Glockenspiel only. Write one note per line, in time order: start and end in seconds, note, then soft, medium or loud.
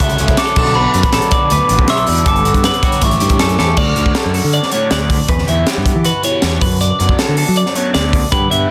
0.38 0.77 D6 loud
0.75 1.03 B5 loud
1.04 1.33 B5 medium
1.33 1.51 D6 medium
1.52 1.87 D6 loud
1.90 2.28 E6 loud
2.28 2.99 D6 loud
3.04 3.56 C#6 medium